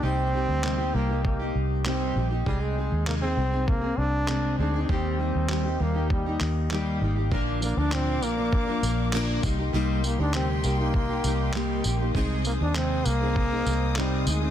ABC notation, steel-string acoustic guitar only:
X:1
M:4/4
L:1/16
Q:1/4=99
K:Cm
V:1 name="Steel-string acoustic guitar"
[C,G,B,EG]2 [G,B,EG]2 [C,G,B,EG] [B,EG] [G,B,EG] [B,EG]2 [B,EG]3 [C,G,B,EG]2 [G,B,EG] [B,EG] | [C,A,CEA]2 [A,CEA]2 [C,A,CEA] [CEA] [A,CEA] [CEA]2 [CA]3 [C,A,CA]2 [A,CEA] [CEA] | [E,G,B,EG]2 [G,B,EG]2 [E,G,B,EG] [B,EG] [G,B,EG] [B,EG]2 [B,EG]3 [E,G,B,EG]2 [G,B,EG] [B,EG] | [B,,D,F,B,DB]2 [F,B,DB] [F,B,DB] [B,,D,F,B,DB]2 [F,B,DB] [F,B,DB]2 [F,B,DB] [F,B,DB]2 [B,,D,F,B,DB]2 [G,B,EG] [B,EG] |
[C,G,B,EG]2 [G,B,EG] [B,EG] [C,G,B,EG]2 [G,B,EG] [B,EG]2 [B,EG] [G,B,EG]2 [C,G,B,EG]2 [G,B,EG] [B,EG] | [C,A,CEA]2 [A,CEA] [CEA] [C,A,CEA]2 [A,CEA] [CEA]2 [CEA] [A,CEA]2 [C,CE]2 [A,CEA] [CEA] |]